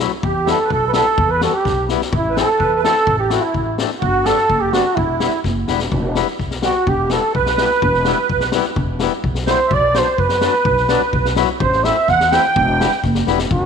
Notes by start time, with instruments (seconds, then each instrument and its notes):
0.00 accordion F#3 A3 E4
0.23 upright bass E2, accordion G4, cornet G4, kick
0.45 accordion G3 B3 E4 A4, snare
0.51 cornet A4
0.64 accordion B4
0.69 upright bass B1, accordion A4, cornet A4, kick
0.88 cornet B4
0.93 accordion G3 B3 E4 A4, cornet A4, snare
1.17 upright bass E2, kick
1.28 accordion B4, cornet B4
1.40 accordion G3 B3 F#4 A4, snare
1.44 cornet A4
1.54 accordion G4, cornet G4
1.65 upright bass B1, kick, snare
1.89 accordion G3 B3 E4, snare
2.01 snare
2.12 upright bass A1, accordion E4, kick
2.18 cornet E4
2.29 accordion B4
2.35 accordion A3 C4 E4 A4, snare
2.40 cornet A4
2.58 upright bass E2, accordion B4, kick
2.75 accordion B4
2.84 accordion A3 C4 E4 A4, cornet A4, snare
2.95 snare
3.07 upright bass A1, kick
3.18 accordion G4, cornet G4
3.30 accordion A3 C4 E4 F#4, cornet F#4, snare
3.42 cornet E4, accordion E4
3.54 upright bass A1, kick
3.78 accordion A3 C4 D4, snare
3.90 snare
3.99 upright bass G1, accordion F#4, kick
4.05 cornet F#4
4.23 accordion G3 B3 D4 A4, cornet A4, snare
4.38 snare
4.49 upright bass F#1, kick
4.58 accordion G4, cornet G4
4.71 accordion G3 B3 D4 F#4, cornet F#4, snare
4.95 upright bass E1, cornet E4, accordion E4, kick
5.20 accordion G3 B3 E4, snare
5.44 upright bass F#1, kick, snare
5.68 upright bass E1, accordion G3 B3 E4, snare
5.79 snare
5.92 upright bass E1, kick
6.15 accordion G3 B3 E4, snare
6.27 snare
6.39 upright bass B1, kick, snare
6.51 snare
6.62 accordion G3 B3 F#4 G4, cornet F#4, snare
6.86 upright bass E1, accordion G4, cornet G4, kick
7.10 accordion G3 B3 E4 A4, cornet A4, snare
7.35 upright bass B1, cornet B4, accordion B4, kick
7.46 snare
7.58 accordion G3 B3 E4, snare
7.70 snare
7.82 upright bass E1, kick
7.94 snare
8.05 accordion G3 B3 E4, snare
8.29 upright bass B1, kick
8.40 snare
8.52 accordion G3 B3 E4, snare
8.64 snare
8.76 upright bass E1, kick
8.99 accordion G3 B3 E4, snare
9.24 upright bass B1, kick
9.35 snare
9.47 accordion G3 B3 E4 C5, cornet C5, snare
9.66 accordion E5
9.71 upright bass B1, accordion D5, kick
9.75 cornet D5
9.94 accordion F#3 B3 D4 C5, cornet C5, snare
10.17 upright bass F#2, accordion B4, cornet B4, kick
10.29 snare
10.41 accordion F#3 B3 D4, snare
10.65 upright bass B1, kick
10.77 snare
10.88 accordion F#3 B3 D4, snare
11.13 upright bass B1, kick
11.25 snare
11.36 accordion F#3 B3 E4, snare
11.59 upright bass A1, accordion C5, cornet C5, kick
11.72 snare
11.84 accordion A3 C4 E4 E5, cornet E5, snare
12.08 upright bass E2, accordion F#5, cornet F#5, kick, snare
12.20 snare
12.32 accordion A3 C4 E4 G5, cornet G5, snare
12.56 upright bass E1, kick
12.80 accordion G3 B3 E4, snare
12.92 snare
13.03 upright bass F#1, kick, snare
13.15 snare
13.26 upright bass E1, accordion G3 B3 E4, snare
13.39 snare
13.50 upright bass E1, cornet F#4, kick